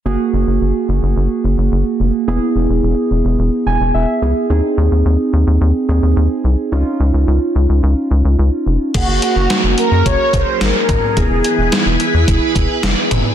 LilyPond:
<<
  \new Staff \with { instrumentName = "Analog polysynth" } { \time 4/4 \key ges \lydian \tempo 4 = 108 r1 | r1 | r1 | r1 |
ges'8 ges'4 bes'8 des''8 c''8 bes'4 | gis'2 r2 | }
  \new Staff \with { instrumentName = "String machine" } { \time 4/4 \key ges \lydian << { r1 | r1 | r1 | r1 |
<ges des' bes'>1 | <e e' b'>1 | } \\ { r1 | r1 | r1 | r1 |
aes'1~ | aes'1 | } >> }
  \new Staff \with { instrumentName = "Synth keys" } { \time 4/4 \key ges \lydian << { r1 | r2 r8 gis''8 e''4 | r1 | r1 |
r1 | r1 | } \\ { <bes ges' aes'>1 | <b e' gis'>2.~ <b e' gis'>8 <b e' gis'>8 | <c' ees' aes'>2~ <c' ees' aes'>8 <c' ees' aes'>4. | <des' ees' f'>1 |
<bes ges' aes'>1 | <b e' gis'>1 | } >> }
  \new Staff \with { instrumentName = "Analog synth bass" } { \clef bass \time 4/4 \key ges \lydian ges,,16 r16 ges,,16 ges,,16 ges,,16 r16 ges,,16 ges,,16 ges,,16 r16 ges,,16 ges,,16 ges,,16 r16 f,,16 r16 | e,,16 r16 e,,16 e,,16 e,,16 r16 e,,16 e,,16 e,,16 r16 e,,16 e,,16 e,,16 r16 des,16 r16 | ees,16 r16 ees,16 ees,16 ees,16 r16 ees,16 ees,16 ees,16 r16 ees,16 ees,16 ees,16 r16 c,16 r16 | des,16 r16 des,16 des,16 des,16 r16 des,16 des,16 des,16 r16 des,16 des,16 des,16 r16 f,,16 r16 |
ges,,16 ges,,16 r16 ges,,16 r16 ges,,16 r16 ges,16 ges,,16 r16 ges,,16 r16 aes,,16 r16 aes,,16 r16 | e,,16 e,,16 r16 e,,16 r16 e,,16 r16 e,16 e,,16 r16 e,,16 r16 ges,,16 r16 ges,,16 r16 | }
  \new DrumStaff \with { instrumentName = "Drums" } \drummode { \time 4/4 r4 r4 r4 r4 | r4 r4 r4 r4 | r4 r4 r4 r4 | r4 r4 r4 r4 |
<cymc hh bd>8 hh8 <hh sn>8 hh8 <hh bd>8 <hh bd>8 <hh sn>8 <hh bd toml>8 | <hh bd>8 hh8 <hh sn>8 hh8 <hh bd>8 <hh bd>8 <hh sn>8 <hh toml>8 | }
>>